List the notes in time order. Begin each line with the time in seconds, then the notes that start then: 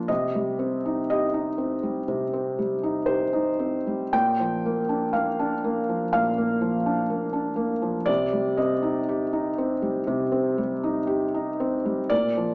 Already playing: A#2 F3 A#3 D4 F4 C5 D5
0.08 C3 D#5
0.35 G3
0.59 C4
0.85 D#4
1.10 G4 D#5
1.34 D#4
1.58 C4
1.83 G3
2.08 C3
2.33 C4
2.59 G3
2.83 D#4
3.06 G4 C5
3.33 D#4
3.59 C4
3.87 G3
4.13 A#2 G5
4.39 F3
4.66 A#3
4.89 D4
5.13 A#3 F5
5.39 D4
5.64 A#3
5.89 F3
6.13 A#2 F5
6.38 A#3
6.61 F3
6.86 D4
7.10 A#3
7.33 D4
7.56 A#3
7.82 F3
8.06 C3 D5
8.33 G3
8.57 C4 D#5
8.82 D#4
9.09 G4
9.33 D#4
9.58 C4
9.82 G3
10.07 C3
10.32 C4
10.58 G3
10.83 D#4
11.07 G4
11.34 D#4
11.60 C4
11.85 G3
12.10 A#2 D5
12.37 F3